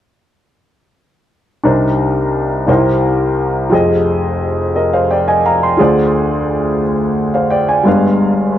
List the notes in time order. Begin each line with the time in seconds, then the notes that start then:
1.63 C2 C3 D4 D#4 A#4 C5
2.66 C2 C3 D#4 G4 A#4 C5
2.73 E4
3.69 F1 F2 F4 G4 G#4
3.74 D#5
4.76 A#4 D#5
4.93 C5 F5
5.11 D5 G5
5.28 D#5 G#5
5.46 F5 A#5
5.63 G5 C6
5.77 D2 D3 F4 G#4 C5
5.82 D5
7.34 C5 F5
7.51 D5 G5
7.69 D5 G#5
7.83 G1 G2 G3 G#3 B4
7.88 F5